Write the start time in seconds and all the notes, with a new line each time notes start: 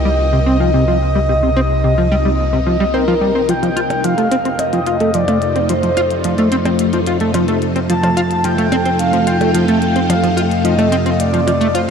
Already playing: C2 C3 A#3 D#4 G4 D#5
0.05 G3
0.33 C3
0.46 C4
0.60 F3
0.74 C3
0.88 F3
1.15 G3
1.29 C3
1.43 C3
1.56 C4
1.84 C3
1.98 F3
2.12 G3
2.25 G3
2.53 C3
2.66 F3
2.80 G3
2.94 C4 A#4
3.08 F3
3.21 G3
3.35 C4
3.49 F2 F3 G5, closed hi-hat
3.63 F3, closed hi-hat
3.76 A3 F4, closed hi-hat
3.90 closed hi-hat, percussion blips
4.04 F3 F5, closed hi-hat
4.18 A3, closed hi-hat
4.31 C4, closed hi-hat
4.45 C4, closed hi-hat
4.59 D#5, closed hi-hat, percussion blips
4.73 F3, closed hi-hat
4.87 F4, closed hi-hat
4.93 F4
5.00 A3, closed hi-hat
5.14 F3 D5, closed hi-hat
5.28 A3, closed hi-hat, percussion blips
5.42 closed hi-hat
5.56 C4, closed hi-hat
5.69 F3 C5, closed hi-hat
5.83 F3, closed hi-hat
5.97 F4, closed hi-hat, percussion blips
6.11 closed hi-hat
6.24 F3, closed hi-hat
6.38 A3, closed hi-hat
6.52 C4, closed hi-hat
6.65 C4, closed hi-hat, percussion blips
6.79 closed hi-hat
6.93 F3, closed hi-hat
7.07 F4, closed hi-hat
7.20 A3, closed hi-hat
7.34 F3, closed hi-hat, percussion blips
7.48 A3, closed hi-hat
7.62 closed hi-hat
7.76 C4, closed hi-hat
7.89 F3 A5, closed hi-hat
8.03 F3, closed hi-hat, percussion blips
8.17 F4, closed hi-hat
8.31 closed hi-hat
8.44 F3 G5, closed hi-hat
8.58 A3, closed hi-hat
8.72 C4, closed hi-hat, percussion blips
8.86 C4, closed hi-hat
8.99 F5, closed hi-hat
9.13 F3, closed hi-hat
9.27 F4 G5, closed hi-hat
9.41 A3, closed hi-hat, percussion blips
9.55 F3, closed hi-hat
9.68 A3, closed hi-hat
9.82 closed hi-hat
9.96 C4, closed hi-hat
10.09 F3 F5, closed hi-hat, percussion blips
10.23 F3, closed hi-hat
10.37 F4, closed hi-hat
10.51 closed hi-hat
10.65 F3 D#5, closed hi-hat
10.78 A3, closed hi-hat, percussion blips
10.92 C4, closed hi-hat
11.06 C4, closed hi-hat
11.20 D5, closed hi-hat
11.33 F3, closed hi-hat
11.47 F3, closed hi-hat, percussion blips
11.61 A3, closed hi-hat
11.75 F4 C5, closed hi-hat